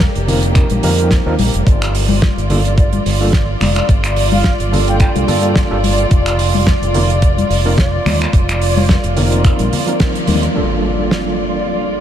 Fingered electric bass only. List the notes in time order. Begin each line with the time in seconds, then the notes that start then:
0.16 F1
0.71 A#1
0.83 F2
1.26 D#2
1.39 A#1
1.54 F1
1.67 G1
2.37 G1
3.06 G1
3.61 F1
3.89 G1
4.59 G1
5.15 C2
5.28 G2
5.71 G1
6.11 F1
6.82 F1
7.50 F1
8.06 D#2
8.33 F1
9.04 F1
9.59 A#1
10.28 D#2